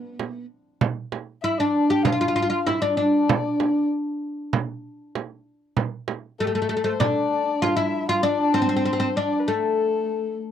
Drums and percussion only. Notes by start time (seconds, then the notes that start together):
0.19 frame drum
0.81 frame drum
1.12 frame drum
2.05 frame drum
2.67 frame drum
3.29 frame drum
3.60 frame drum
4.53 frame drum
5.15 frame drum
5.77 frame drum
6.08 frame drum
7.01 frame drum
7.64 frame drum